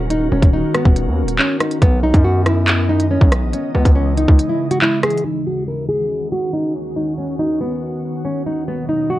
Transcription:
0.00 0.30 D#1 loud
0.00 1.78 D#3 medium
0.00 1.78 C#4 medium
0.00 1.78 F#4 medium
0.00 3.49 A#4 medium
0.10 0.30 D#4 medium
0.10 closed hi-hat medium
0.32 0.42 D#1 loud
0.32 0.51 C#4 medium
0.42 0.63 D#1 loud
0.42 kick loud
0.42 closed hi-hat medium
0.53 0.73 D#4 medium
0.75 1.35 B3 medium
0.75 cross-stick loud
0.75 closed hi-hat medium
0.85 1.08 D#1 loud
0.85 kick loud
0.96 closed hi-hat medium
1.07 1.24 D#2 loud
1.23 1.38 D#1 loud
1.28 closed hi-hat medium
1.39 1.58 C#4 medium
1.39 clap loud
1.60 1.80 D#4 medium
1.60 cross-stick loud
1.60 closed hi-hat medium
1.71 closed hi-hat medium
1.82 2.13 B1 loud
1.82 3.51 B3 medium
1.82 2.01 B3 medium
1.82 5.21 D#5 medium
1.82 kick loud
1.82 closed hi-hat medium
2.03 2.23 D#4 medium
2.14 3.17 F#2 loud
2.14 kick medium
2.14 closed hi-hat medium
2.24 2.44 F#4 medium
2.46 2.86 E4 medium
2.46 cross-stick loud
2.46 closed hi-hat medium
2.68 clap loud
2.68 closed hi-hat medium
2.89 3.08 D#4 medium
3.00 closed hi-hat medium
3.11 3.30 C#4 medium
3.21 3.44 B1 loud
3.21 kick loud
3.32 cross-stick loud
3.32 closed hi-hat medium
3.42 3.53 A#1 loud
3.53 5.23 C#3 medium
3.53 5.23 E3 loud
3.53 5.23 G#3 medium
3.53 3.73 C#4 medium
3.53 closed hi-hat medium
3.75 3.85 C#2 loud
3.75 3.94 B3 medium
3.85 4.26 C#2 loud
3.85 kick loud
3.85 closed hi-hat medium
3.95 4.15 C#4 medium
4.17 4.48 D#4 medium
4.17 closed hi-hat medium
4.28 4.39 C#2 loud
4.28 kick loud
4.39 closed hi-hat medium
4.49 4.69 E4 medium
4.71 4.81 F#4 medium
4.71 closed hi-hat medium
4.82 5.01 E4 medium
4.82 clap loud
5.03 5.23 G#4 medium
5.03 cross-stick loud
5.03 closed hi-hat medium
5.03 open hi-hat medium
5.10 closed hi-hat medium
5.18 closed hi-hat medium
5.25 8.64 D#2 medium
5.25 8.64 D#3 medium
5.25 8.64 C#4 medium
5.25 5.44 D#4 medium
5.25 8.64 F#4 medium
5.47 5.66 F#4 medium
5.68 5.87 A#4 medium
5.89 6.29 G#4 medium
6.32 6.51 F#4 medium
6.53 6.73 D#4 medium
6.96 7.16 D#4 medium
7.18 7.37 C#4 medium
7.39 7.58 D#4 medium
7.61 8.21 B3 medium
8.25 8.44 C#4 medium
8.46 8.66 D#4 medium
8.67 9.19 B2 medium
8.67 9.19 F#3 medium
8.67 9.19 A#3 medium
8.67 8.87 B3 medium
8.67 9.19 D#5 medium
8.89 9.08 D#4 medium
9.10 9.19 F#4 medium

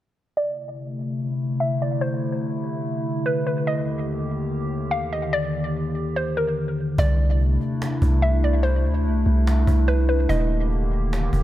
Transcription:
0.36 3.64 C3 medium
0.36 6.94 D3 medium
0.36 3.64 A3 medium
0.36 3.64 E4 medium
0.36 0.76 D5 loud
1.60 1.80 E5 medium
1.82 2.01 D5 medium
2.01 2.40 C5 medium
3.26 3.45 B4 medium
3.47 3.66 B4 medium
3.67 6.95 D#2 medium
3.67 6.95 D#3 medium
3.67 6.95 G4 medium
3.67 4.06 D#5 loud
4.91 5.11 F5 medium
5.13 5.32 D#5 medium
5.33 5.72 D5 loud
6.16 6.36 C5 medium
6.37 6.56 A#4 medium
6.98 7.58 C2 loud
6.98 10.26 C3 medium
6.98 10.26 A3 medium
6.98 10.26 D4 medium
6.98 10.26 E4 medium
6.98 7.38 D5 loud
6.98 cajon bass loud
7.40 cajon slap soft
7.61 cajon slap soft
7.82 cajon slap loud
8.02 8.86 C2 loud
8.02 cajon bass loud
8.22 8.42 E5 medium
8.22 cajon slap soft
8.43 8.63 D5 medium
8.43 cajon slap soft
8.63 9.02 C5 medium
8.63 cajon slap soft
8.85 9.07 D2 loud
9.05 9.25 C2 loud
9.05 cajon slap soft
9.26 9.66 C2 loud
9.26 cajon slap soft
9.47 cajon slap loud
9.67 10.27 C2 loud
9.67 cajon bass loud
9.88 10.08 B4 medium
9.88 cajon slap soft
10.09 10.28 B4 medium
10.09 cajon slap soft
10.29 11.29 D#1 loud
10.29 11.43 D3 medium
10.29 11.43 D#3 medium
10.29 11.43 A#3 medium
10.29 11.43 G4 medium
10.29 10.68 D#5 loud
10.29 cajon bass loud
10.71 cajon slap soft
10.92 cajon slap soft
11.13 cajon slap loud
11.33 11.43 D#1 loud
11.33 cajon bass loud

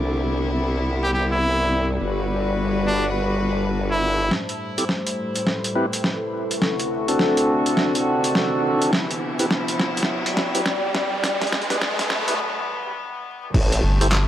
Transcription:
0.00 1.98 C2 medium
0.00 1.98 C3 medium
0.00 5.25 G3 medium
0.00 1.98 B3 medium
0.00 0.64 D4 medium
0.00 1.98 E4 medium
0.00 0.45 A4 medium
0.00 0.63 E5 medium
0.77 5.25 D5 medium
1.03 1.10 G4 medium
1.14 1.25 G4 medium
1.32 1.89 E4 medium
2.00 4.29 G1 medium
2.00 4.29 G3 medium
2.00 4.29 F#4 medium
2.00 4.29 B4 medium
2.87 3.06 D4 medium
3.07 5.25 A5 medium
3.91 4.31 E4 medium
4.31 6.60 A2 medium
4.31 6.60 G3 medium
4.31 9.87 A4 medium
4.31 6.60 C5 medium
4.31 snare soft
4.31 riser medium
4.49 closed hi-hat soft
4.78 4.84 C4 medium
4.78 4.84 E4 medium
4.78 4.85 G4 medium
4.78 4.84 A4 medium
4.78 closed hi-hat medium
4.89 snare soft
4.93 7.56 B5 medium
5.04 9.87 E5 medium
5.04 closed hi-hat medium
5.36 closed hi-hat medium
5.47 snare soft
5.64 closed hi-hat medium
5.75 5.86 C4 medium
5.75 5.86 E4 medium
5.75 5.86 G4 medium
5.75 5.86 B4 loud
5.93 closed hi-hat medium
6.04 snare medium
6.51 closed hi-hat medium
6.61 8.91 D2 medium
6.61 11.20 C3 medium
6.61 9.86 D4 medium
6.61 8.90 F#4 medium
6.61 snare medium
6.80 closed hi-hat soft
7.08 8.91 C4 medium
7.08 8.91 D4 medium
7.08 8.91 F#4 medium
7.08 8.91 A4 medium
7.08 closed hi-hat medium
7.19 snare medium
7.37 closed hi-hat medium
7.66 closed hi-hat medium
7.77 snare medium
7.95 closed hi-hat medium
8.24 closed hi-hat medium
8.35 snare medium
8.82 closed hi-hat medium
8.92 11.21 B3 medium
8.92 11.21 E4 medium
8.92 snare medium
9.11 closed hi-hat soft
9.32 12.39 G5 medium
9.39 9.46 C4 medium
9.39 9.46 E4 medium
9.39 9.46 G4 medium
9.39 9.46 B4 medium
9.39 closed hi-hat medium
9.46 12.39 D5 medium
9.51 snare medium
9.68 closed hi-hat medium
9.79 snare medium
9.97 closed hi-hat medium
10.03 snare medium
10.26 closed hi-hat medium
10.37 snare medium
10.55 10.61 C4 medium
10.55 10.61 E4 medium
10.55 10.61 G4 medium
10.55 10.61 B4 medium
10.55 closed hi-hat medium
10.66 snare medium
10.95 snare medium
11.23 13.52 G2 medium
11.23 13.52 F#3 medium
11.23 13.52 B3 loud
11.23 snare loud
11.23 closed hi-hat medium
11.41 snare medium
11.41 closed hi-hat soft
11.47 closed hi-hat soft
11.52 snare medium
11.61 closed hi-hat soft
11.70 11.77 B3 medium
11.70 11.77 E4 medium
11.70 11.77 G4 medium
11.70 11.77 B4 medium
11.70 snare medium
11.70 closed hi-hat medium
11.81 snare medium
11.99 snare medium
11.99 closed hi-hat medium
12.10 snare loud
12.28 12.34 B3 medium
12.28 12.35 E4 medium
12.28 12.35 G4 medium
12.28 12.35 B4 medium
12.28 closed hi-hat medium
13.54 13.81 A1 loud
13.54 14.28 C3 medium
13.54 14.28 G3 medium
13.54 14.28 A3 medium
13.54 kick loud
13.54 crash loud
13.72 closed hi-hat soft
13.83 14.28 G1 medium
14.01 14.08 E4 medium
14.01 14.08 G4 medium
14.01 14.08 A4 medium
14.01 14.08 C5 medium
14.01 closed hi-hat medium
14.12 clap loud
14.12 snare medium

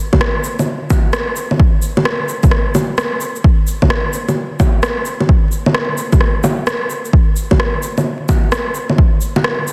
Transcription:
0.13 kick medium
0.13 low bongo medium
0.21 cross-stick loud
0.44 shaker medium
0.59 low bongo soft
0.59 shaker soft
0.90 kick loud
0.90 low bongo medium
0.90 shaker medium
1.13 cross-stick loud
1.13 shaker soft
1.36 shaker medium
1.51 low bongo soft
1.60 kick loud
1.82 shaker medium
1.97 low bongo medium
2.05 cross-stick loud
2.29 shaker medium
2.43 kick loud
2.43 low bongo soft
2.43 shaker soft
2.51 cross-stick medium
2.75 low bongo medium
2.75 shaker medium
2.98 cross-stick loud
2.98 shaker soft
3.21 shaker medium
3.36 shaker soft
3.44 kick loud
3.67 shaker medium
3.82 kick medium
3.82 low bongo medium
3.90 cross-stick loud
4.13 shaker medium
4.28 low bongo soft
4.28 shaker soft
4.60 kick loud
4.60 low bongo medium
4.60 shaker medium
4.83 cross-stick loud
4.83 shaker soft
5.05 shaker medium
5.20 low bongo soft
5.29 kick loud
5.52 shaker medium
5.66 low bongo medium
5.75 cross-stick loud
5.98 shaker medium
6.12 kick loud
6.12 low bongo soft
6.12 shaker soft
6.21 cross-stick medium
6.44 low bongo medium
6.44 shaker medium
6.67 cross-stick loud
6.67 shaker soft
6.90 shaker medium
7.05 shaker soft
7.13 kick loud
7.36 shaker medium
7.51 kick medium
7.51 low bongo medium
7.60 cross-stick medium
7.83 shaker medium
7.98 low bongo soft
7.98 shaker soft
8.29 kick loud
8.29 low bongo medium
8.29 shaker medium
8.52 cross-stick loud
8.52 shaker soft
8.75 shaker medium
8.90 low bongo soft
8.98 kick loud
9.21 shaker medium
9.36 low bongo medium
9.44 cross-stick loud
9.68 shaker medium

